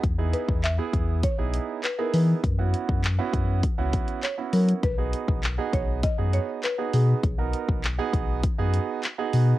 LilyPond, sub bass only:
\new Staff \with { instrumentName = "Sub bass" } { \clef bass \time 4/4 \key b \major \tempo 4 = 100 e,8. e,8. e,8. b,,8 r8. e8 | fis,8. fis,8. fis,8. cis,8 r8. fis8 | b,,8. b,,8. b,,8. fis,8 r8. b,8 | b,,8. b,,8. b,,8. fis,8 r8. b,8 | }